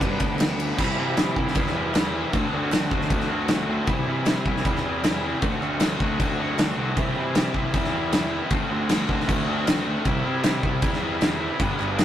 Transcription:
0.00 overdriven electric guitar G2 D3 G3 B3 D4, picked electric bass G2, kick, ride
0.20 picked electric bass D2, kick, ride
0.39 snare, clap, ride
0.60 ride
0.78 picked electric bass C2, overdriven electric guitar C3 E3 G3 C4 E4, kick, crash
0.97 overdriven electric guitar C3 E3 G3 C4 E4, picked electric bass C3
1.15 overdriven electric guitar C3 E3 G3 C4 E4, snare, clap, crash
1.35 picked electric bass C2, overdriven electric guitar C3 E3 G3 C4 E4, kick
1.47 snare
1.54 picked electric bass E2, overdriven electric guitar C3 E3 G3 C4 E4, kick, crash
1.67 snare
1.73 overdriven electric guitar C3 E3 G3 C4 E4
1.93 overdriven electric guitar C3 E3 G3 C4 E4, snare, clap, crash
2.13 overdriven electric guitar C3 E3 G3 C4 E4
2.31 picked electric bass D2, overdriven electric guitar D3 A3 C4 F#4, kick, crash
2.52 picked electric bass D2, overdriven electric guitar D3 A3 C4 F#4
2.71 overdriven electric guitar D3 A3 C4 F#4, snare, clap, crash
2.91 picked electric bass D2, overdriven electric guitar D3 A3 C4 F#4, kick
3.01 snare
3.09 picked electric bass D2, overdriven electric guitar D3 A3 C4 F#4, kick, crash
3.20 snare
3.30 overdriven electric guitar D3 A3 C4 F#4
3.48 overdriven electric guitar D3 A3 C4 F#4, snare, clap, crash
3.68 overdriven electric guitar D3 A3 C4 F#4
3.87 picked electric bass C2, overdriven electric guitar C3 E3 G3 C4 E4, kick, crash
4.06 overdriven electric guitar C3 E3 G3 C4 E4, picked electric bass C3
4.26 overdriven electric guitar C3 E3 G3 C4 E4, snare, clap, crash
4.45 picked electric bass C2, overdriven electric guitar C3 E3 G3 C4 E4, kick
4.56 snare
4.65 picked electric bass E2, overdriven electric guitar C3 E3 G3 C4 E4, kick, crash
4.76 snare
4.84 overdriven electric guitar C3 E3 G3 C4 E4
5.02 overdriven electric guitar C3 E3 G3 C4 E4, snare, clap, crash
5.22 overdriven electric guitar C3 E3 G3 C4 E4
5.41 picked electric bass D2, overdriven electric guitar D3 A3 C4 F#4, kick, crash
5.61 picked electric bass D2, overdriven electric guitar D3 A3 C4 F#4, clap
5.80 overdriven electric guitar D3 A3 C4 F#4, snare, clap, crash
6.00 picked electric bass D2, overdriven electric guitar D3 A3 C4 F#4, kick
6.19 picked electric bass D2, overdriven electric guitar D3 A3 C4 F#4, kick, crash
6.39 overdriven electric guitar D3 A3 C4 F#4
6.57 picked electric bass D2, overdriven electric guitar D3 A3 C4 F#4, snare, clap, crash
6.77 picked electric bass C2, overdriven electric guitar D3 A3 C4 F#4
6.97 picked electric bass C2, overdriven electric guitar C3 E3 G3 C4 E4, kick, crash
7.16 picked electric bass C3, overdriven electric guitar C3 E3 G3 C4 E4
7.35 overdriven electric guitar C3 E3 G3 C4 E4, snare, clap, crash
7.53 picked electric bass C2, overdriven electric guitar C3 E3 G3 C4 E4, kick
7.73 picked electric bass E2, overdriven electric guitar C3 E3 G3 C4 E4, kick, crash
7.84 snare
7.92 overdriven electric guitar C3 E3 G3 C4 E4
8.12 overdriven electric guitar C3 E3 G3 C4 E4, snare, clap, crash
8.31 overdriven electric guitar C3 E3 G3 C4 E4
8.50 picked electric bass D2, overdriven electric guitar D3 A3 C4 F#4, kick, crash
8.69 picked electric bass D2, overdriven electric guitar D3 A3 C4 F#4
8.89 overdriven electric guitar D3 A3 C4 F#4, snare, clap, crash
9.08 picked electric bass D2, overdriven electric guitar D3 A3 C4 F#4, kick
9.20 snare
9.28 picked electric bass D2, overdriven electric guitar D3 A3 C4 F#4, kick, crash
9.48 overdriven electric guitar D3 A3 C4 F#4
9.67 overdriven electric guitar D3 A3 C4 F#4, snare, clap, crash
9.86 overdriven electric guitar D3 A3 C4 F#4
10.05 picked electric bass C2, overdriven electric guitar C3 G3 C4 E4, kick, crash
10.25 overdriven electric guitar C3 G3 C4 E4, picked electric bass C3
10.44 overdriven electric guitar C3 G3 C4 E4, snare, clap, crash
10.63 picked electric bass C2, overdriven electric guitar C3 G3 C4 E4, kick
10.82 picked electric bass E2, overdriven electric guitar C3 G3 C4 E4, kick, crash
10.93 snare
11.01 overdriven electric guitar C3 G3 C4 E4
11.20 overdriven electric guitar C3 G3 C4 E4, snare, clap, crash
11.39 overdriven electric guitar C3 G3 C4 E4
11.59 picked electric bass G1, overdriven electric guitar G2 D3 G3 B3 D4, kick, crash
11.77 picked electric bass G1, overdriven electric guitar G2 D3 G3 B3 D4, clap
11.97 overdriven electric guitar G2 D3 G3 B3 D4, snare, clap, crash

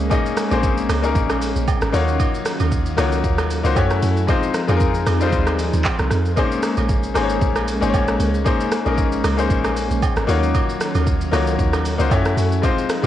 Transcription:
Already playing: log drum bass C#2, string machine G#3 A#3 C#4, grand piano A#3 C#4 D#4 G#4 C5 D#5
0.00 shaker
0.10 grand piano A#3 C#4 D#4 G#4 D#5, kick, high agogo, shaker
0.26 shaker
0.37 cross-stick, open hi-hat, shaker
0.50 log drum bass A#1, grand piano A#3 C4 D#4 G#4 C5, high agogo, shaker
0.57 grand piano C#4
0.63 kick, shaker
0.78 shaker
0.89 log drum bass C#2, cross-stick, open hi-hat, high agogo, shaker
1.02 grand piano A#3 C#4 D#4 G#4 A#4, shaker
1.15 log drum bass A#1, kick, shaker
1.30 cross-stick, high agogo, shaker
1.42 open hi-hat, shaker
1.56 log drum bass A#1, shaker
1.68 kick, high agogo, low woodblock, shaker
1.81 log drum bass G#1, cross-stick, shaker
1.92 log drum bass D#2, string machine D#3 F#3 F5, grand piano A#3 D#4 F4 F#4 C#5, open hi-hat, shaker
2.08 shaker
2.20 kick, high agogo, shaker
2.34 shaker
2.45 cross-stick, open hi-hat, shaker
2.60 log drum bass D#2, high agogo, shaker
2.72 kick, shaker
2.86 shaker
2.97 log drum bass C#2, grand piano A#3 D#4 F4 F#4 C#5, cross-stick, open hi-hat, high agogo, shaker
3.12 shaker
3.24 log drum bass D#2, kick, shaker
3.38 cross-stick, high agogo, shaker
3.50 open hi-hat, shaker
3.63 log drum bass C#2, grand piano A#3 D#4 F4 F#4 C5, shaker
3.75 log drum bass F#2, string machine F#3 E4 A4, grand piano A3 C#4 E4 F#4 C#5, kick, high agogo, low woodblock, shaker
3.90 cross-stick, shaker
4.02 log drum bass F#2, open hi-hat, shaker
4.17 shaker
4.27 string machine F3 C4 D#4 G#4, grand piano G#3 C4 D#4 F4 C5, kick, high agogo, shaker
4.43 shaker
4.54 cross-stick, open hi-hat, shaker
4.68 log drum bass F2, grand piano G#3 C4 D#4 F4 G#4, high agogo, shaker
4.77 grand piano A#4, kick, shaker
4.94 shaker
5.07 log drum bass F2, cross-stick, open hi-hat, high agogo, shaker
5.20 grand piano G3 C4 D#4 F4 C5, shaker
5.26 grand piano G#3
5.32 log drum bass D#2, kick, shaker
5.47 cross-stick, high agogo, shaker
5.59 open hi-hat, shaker
5.73 log drum bass D#2, shaker
5.84 kick, clap, high agogo, low woodblock, shaker
5.99 log drum bass C2, cross-stick, shaker
6.10 log drum bass F2, cross-stick, open hi-hat, shaker
6.25 shaker
6.36 string machine G#3 A#3 C#4, grand piano A#3 C4 D#4 G#4 C5, kick, high agogo, shaker
6.43 grand piano C#4
6.52 shaker
6.63 cross-stick, open hi-hat, shaker
6.77 log drum bass A#1, high agogo, shaker
6.89 kick, shaker
7.03 shaker
7.14 log drum bass G#1, grand piano A#3 C#4 D#4 G#4 C5, cross-stick, open hi-hat, high agogo, shaker
7.23 grand piano C#5
7.30 shaker
7.41 log drum bass A#1, kick, shaker
7.56 cross-stick, high agogo, shaker
7.68 open hi-hat, shaker
7.81 log drum bass G#1, grand piano A#3 C#4 D#4 G#4 C5, shaker
7.90 grand piano C#5
7.94 log drum bass A#1, kick, high agogo, low woodblock, shaker
8.08 cross-stick, shaker
8.20 log drum bass C#2, open hi-hat, shaker
8.34 shaker
8.45 grand piano A#3 C#4 D#4 G#4 C5, kick, high agogo, shaker
8.61 shaker
8.72 cross-stick, open hi-hat, shaker
8.85 log drum bass A#1, grand piano A#3 C#4 D#4 G#4 A#4, high agogo, shaker
8.98 kick, shaker
9.12 shaker
9.24 log drum bass C#2, cross-stick, open hi-hat, high agogo, shaker
9.37 grand piano A#3 C#4 D#4 G#4 C5, shaker
9.50 log drum bass A#1, kick, shaker
9.64 cross-stick, high agogo, shaker
9.77 open hi-hat, shaker
9.91 log drum bass A#1, shaker
10.02 kick, high agogo, low woodblock, shaker
10.16 log drum bass G#1, cross-stick, shaker
10.27 log drum bass D#2, string machine D#3 F#3 F5, grand piano A#3 D#4 F4 F#4 C#5, open hi-hat, shaker
10.43 shaker
10.55 kick, high agogo, shaker
10.69 shaker
10.81 cross-stick, open hi-hat, shaker
10.95 log drum bass D#2, high agogo, shaker
11.07 kick, shaker
11.21 shaker
11.32 log drum bass C#2, grand piano A#3 D#4 F4 F#4 C#5, cross-stick, open hi-hat, high agogo, shaker
11.47 shaker
11.59 log drum bass D#2, kick, shaker
11.73 cross-stick, high agogo, shaker
11.85 open hi-hat, shaker
11.98 log drum bass C#2, grand piano A#3 D#4 F4 F#4 C5, shaker
12.10 log drum bass F#2, string machine F#3 E4 A4, grand piano A3 C#4 E4 F#4 C#5, kick, high agogo, low woodblock, shaker
12.25 cross-stick, shaker
12.37 log drum bass F#2, open hi-hat, shaker
12.52 shaker
12.62 string machine F3 C4 D#4 G#4, grand piano G#3 C4 D#4 F4 C5, kick, high agogo, shaker
12.78 shaker
12.89 cross-stick, open hi-hat, shaker
13.02 log drum bass F2, grand piano G#3 C4

